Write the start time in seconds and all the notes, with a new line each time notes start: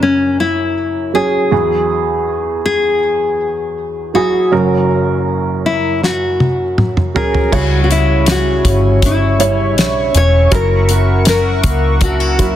Already playing: F#1 F#2 F#3 A#4 C#5
0.03 C#4
0.40 E4
1.14 F#3 C#4 G#4
1.51 E2 F#3 E4 G#4
2.66 G#4
4.14 F#3 E4 F#4 G#4
4.51 F#1 F#2 F#3 C#4 A#4
5.66 E4
6.03 F#4, snare
6.40 high tom
6.78 mid tom
6.97 mid tom
7.14 F#3 C#4 G#4 A#4, floor tom
7.34 floor tom
7.51 C#2 C#3 G3 E4 F#4 C#5 E5 C#6, kick, crash
7.84 F#4
7.91 E4, closed hi-hat
8.26 snare, closed hi-hat
8.31 F#4
8.64 G1 C#4, kick, closed hi-hat
9.02 E4, kick, closed hi-hat
9.39 G3 C#4 E4 C#5, closed hi-hat
9.77 B1 D4 E4, snare, closed hi-hat
10.15 E1 C#4 C#5, closed hi-hat
10.51 F#1 F#2 F#3 E4 A#4 F#5, kick, closed hi-hat
10.89 E4 F#4, closed hi-hat
11.25 F#4 A#4, snare, closed hi-hat
11.63 C#2 A#3, kick, closed hi-hat
12.01 D4 F#4, kick, closed hi-hat
12.20 E4
12.38 F#3 A#3 E4 F#4, kick, closed hi-hat